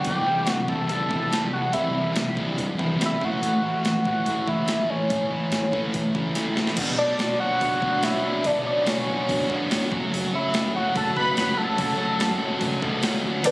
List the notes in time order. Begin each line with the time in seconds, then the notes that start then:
0.05 C2 C3 E3 G3 G5 D6, kick, open hi-hat
0.26 C2 C3 E3 G3 C4 E4
0.47 C2 C3 E3 F#5 C#6, snare, open hi-hat
0.68 C3 E3 G3 C4 E4 A5 E6, kick
0.88 C2 C3 E3 G3 A5 E6, kick, open hi-hat
1.09 E2 C3 E3 G3 C4 E4, kick
1.31 C2 C3 E3 G3, snare, open hi-hat
1.52 C3 E3 G3 C4 E4 F#5 C#6
1.73 C2 C3 E3 G3 E5 B5, kick, open hi-hat
1.94 C2 C3 E3 G3 C4 E4
2.14 C2 C3 E3, snare, open hi-hat
2.35 C3 E3 G3 C4 E4, kick
2.57 C2 C3 E3, kick, open hi-hat
2.78 E2 C3 E3 G3 C4 E4, kick
2.98 C2 C3 E3 G3, snare, open hi-hat
3.05 E5 B5
3.19 A1 A2 E3 A3 C#4 E4, kick
3.24 F#5 C#6
3.41 A1 A2 E3 A3, open hi-hat
3.63 A1 A2 E3 A3 C#4 E4
3.84 A1 A2 E3, snare, open hi-hat
4.05 A2 E3 A3 C#4 E4 F#5 C#6, kick
4.26 A1 A2 E3 A3, kick, open hi-hat
4.47 C#2 A2 E3 A3 C#4 E4 E5 B5, kick
4.67 A1 A2 E3 A3, snare, open hi-hat
4.90 A2 E3 A3 C#4 E4 C#5 G#5
5.10 A1 A2 E3 A3, kick, open hi-hat
5.30 A1 A2 E3 A3 C#4 E4
5.52 A1 A2 E3, snare, open hi-hat
5.72 A2 E3 A3 C#4 E4, kick
5.94 A1 A2 E3, kick, open hi-hat
6.15 C#2 A2 E3 A3 C#4 E4, kick
6.35 A1 A2 E3 A3, snare, open hi-hat
6.57 A2 E3 A3 C#4 E4, snare
6.67 snare
6.76 B1 B2 F#3 B3 D4 F#4, kick, open hi-hat, crash
6.97 B1 B3 D4 F#4 C#5 D5 A5
7.19 B1 F#3 B3 D4 F#4, snare, open hi-hat
7.40 B1 B2 F#3 B3 D4 F#4 C#5 F#5 C#6
7.60 B1 F#3 B3 D4 F#4, kick, open hi-hat
7.80 B1 B2 F#3 B3 D4 F#4, kick
8.02 B1 F#3 B3 D4 F#4 C#5 E5 B5, snare, open hi-hat
8.24 B1 B3 D4 F#4
8.44 B1 B2 F#3 B3 D4 F#4 D5 A5, kick, open hi-hat
8.65 B1 B3 D4 F#4 C#5 D5 A5
8.86 B1 F#3 B3 D4 F#4 C#5 G#5, snare, open hi-hat
9.07 B1 B2 F#3 B3 D4 F#4 C#5
9.28 F#2 F#3 B3 D4 F#4, kick, open hi-hat
9.48 F#1 B2 F#3 B3 D4 F#4, kick
9.70 G1 F#3 B3 D4 F#4 C#5, snare, open hi-hat
9.91 F#1 F#2 C#3 F#3 A3 C#4 F#4, kick
10.11 F#1 F#2 C#3 F#3 A3 C#4 F#4, open hi-hat
10.33 F#1 F#3 A3 C#4 F#4 C#5 E5 B5
10.53 F#1 F#3 A3 C#4 F#4 A4, snare, open hi-hat
10.73 F#1 F#2 C#3 F#3 A3 C#4 F#4 C#5 F#5 C#6
10.94 F#1 F#3 A3 C#4 F#4 A5 E6, kick, open hi-hat
11.14 F#1 F#2 C#3 F#3 A3 C#4 F#4 A4 B5 F#6, kick
11.34 F#1 F#3 A3 C#4 F#4 C#5, snare, open hi-hat
11.56 F#1 F#3 A3 C#4 F#4 A5 E6
11.77 F#1 F#2 C#3 F#3 A3 C#4 F#4, kick, open hi-hat
11.98 F#1 F#3 A3 C#4 F#4 C#5
12.18 F#1 F#3 A3 C#4 F#4 A4, snare, open hi-hat
12.39 F#1 F#2 C#3 F#3 A3 C#4 F#4 C#5
12.59 C#2 F#3 A3 C#4 F#4, kick, open hi-hat
12.81 C#2 F#2 C#3 F#3 A3 C#4 F#4 A4, kick
13.03 C#2 F#3 A3 C#4 F#4 C#5, snare, open hi-hat
13.23 D2 F#3 A3 C#4 F#4
13.43 E1 E2 B2 E3 G3 B3 E4 G4 B4 D5 A5, kick, open hi-hat, crash
13.48 G4